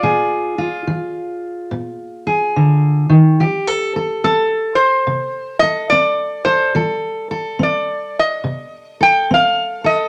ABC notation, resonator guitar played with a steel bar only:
X:1
M:4/4
L:1/8
Q:"Swing" 1/4=71
K:Fdor
V:1 name="Resonator guitar played with a steel bar"
d4- d z3 | z2 =A c2 e d c | z2 d e2 g f e |]